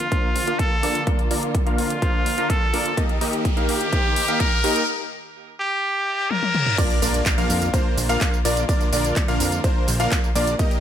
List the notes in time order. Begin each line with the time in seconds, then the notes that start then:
Already playing: D3 A#3 F4, riser
0.12 A#3 D4 F4 A#4 C5, kick, closed hi-hat
0.35 A#1, open hi-hat
0.47 A#3 D4 F4 A#4 F5, closed hi-hat
0.59 A4, kick, closed hi-hat
0.83 A#1 A#3 D4 F4 A#4 D5, open hi-hat
0.95 closed hi-hat
1.07 A#3 D4 F4 A#4 D5, kick, closed hi-hat
1.19 closed hi-hat
1.31 A#1 A#3 D4 F4 A#4 D5, open hi-hat
1.43 closed hi-hat
1.55 kick, closed hi-hat
1.66 A#1 A#3 D4 F4 A#4 F5, closed hi-hat
1.78 F2 F4, open hi-hat
1.90 closed hi-hat
2.02 A#3 D4 F4 A#4 C5, kick, closed hi-hat
2.26 A#1, open hi-hat
2.38 A#3 D4 F4 A#4 F5, closed hi-hat
2.50 A4, kick, closed hi-hat
2.73 A#1 A#3 D4 F4 A#4 D5, open hi-hat
2.86 closed hi-hat
2.97 D#3 A#3 D#4 G4 A#4 D#5, kick, closed hi-hat
3.09 closed hi-hat
3.21 D#2 A#3 D#4 G4 A#4 D#5, open hi-hat
3.33 closed hi-hat
3.45 kick, closed hi-hat
3.57 D#2 A#3 D#4 G4 A#4 F5, closed hi-hat
3.69 A#1 G4, open hi-hat
3.81 closed hi-hat
3.93 A#3 D#4 G4 A#4 C5, kick, closed hi-hat
4.16 D#2, open hi-hat
4.28 A#3 D#4 G4 A#4 F5, closed hi-hat
4.40 A#4, kick, closed hi-hat
4.64 D#2 A#3 D#4 G4 A#4 D#5, open hi-hat
4.76 closed hi-hat
5.59 G4
5.83 reverse cymbal
6.31 A#4, high tom
6.43 high tom
6.55 mid tom
6.67 mid tom
6.78 D3 A#3 D4 F4 A#4 D5, kick, closed hi-hat, crash, tambourine, impact
6.90 closed hi-hat, tambourine
7.02 A#1 A#3 D4 F4 A#4 D5, open hi-hat, tambourine
7.14 closed hi-hat, tambourine
7.26 kick, clap, closed hi-hat, tambourine
7.38 A#1 A#3 D4 F4 A#4 F5, closed hi-hat, tambourine
7.50 F2, open hi-hat, tambourine
7.62 closed hi-hat, tambourine
7.74 A#3 D4 F4 A#4 C5, kick, closed hi-hat, tambourine
7.97 A#1, open hi-hat, tambourine
8.09 A#3 D4 F4 A#4 F5, closed hi-hat, tambourine
8.21 kick, clap, closed hi-hat, tambourine
8.34 tambourine
8.45 A#1 A#3 D4 F4 A#4 D5, open hi-hat, tambourine
8.57 closed hi-hat, tambourine
8.69 A#3 D4 F4 A#4 D5, kick, closed hi-hat, tambourine
8.81 closed hi-hat, tambourine
8.93 A#1 A#3 D4 F4 A#4 D5, open hi-hat, tambourine
9.05 closed hi-hat, tambourine
9.16 kick, clap, closed hi-hat, tambourine
9.28 A#1 A#3 D4 F4 A#4 F5, closed hi-hat, tambourine
9.40 F2, open hi-hat, tambourine
9.52 closed hi-hat, tambourine
9.64 A#3 D4 F4 A#4 C5, kick, closed hi-hat, tambourine
9.88 A#1, open hi-hat, tambourine
10.00 A#3 D4 F4 A#4 F5, closed hi-hat, tambourine
10.11 kick, clap, closed hi-hat, tambourine
10.24 tambourine
10.35 A#1 A#3 D4 F4 A#4 D5, open hi-hat, tambourine
10.47 closed hi-hat, tambourine
10.59 D#3 A#3 D#4 G4 A#4 D#5, kick, closed hi-hat, tambourine
10.71 closed hi-hat, tambourine